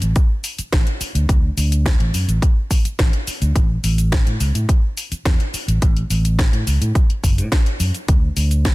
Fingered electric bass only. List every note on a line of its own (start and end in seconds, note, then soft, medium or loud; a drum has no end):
0.02 0.11 A1 loud
0.59 muted fingered electric bass stroke soft
0.73 0.82 A1 medium
1.01 muted fingered electric bass stroke soft
1.15 1.25 D2 medium
1.29 1.49 D2 loud
1.57 1.93 D2 loud
2.00 2.10 A1 loud
2.14 2.24 F#2 loud
2.28 2.38 A1 loud
2.85 muted fingered electric bass stroke soft
2.99 3.09 A1 medium
3.27 muted fingered electric bass stroke soft
3.42 3.51 D2 medium
3.56 3.75 A1 loud
3.84 4.19 A1 loud
4.26 4.36 A2 loud
4.40 4.50 C#2 loud
4.55 4.64 A2 loud
5.12 muted fingered electric bass stroke soft
5.25 5.35 E2 medium
5.54 muted fingered electric bass stroke soft
5.68 5.77 A1 medium
5.82 6.02 A1 loud
6.10 6.46 A1 loud
6.53 6.62 A2 loud
6.67 6.77 C#2 loud
6.81 6.91 A2 medium
7.10 muted fingered electric bass stroke soft
7.23 7.39 F#1 medium
7.38 7.47 A2 medium
7.80 7.90 F#2 medium
8.08 8.28 D2 loud
8.37 8.72 D2 loud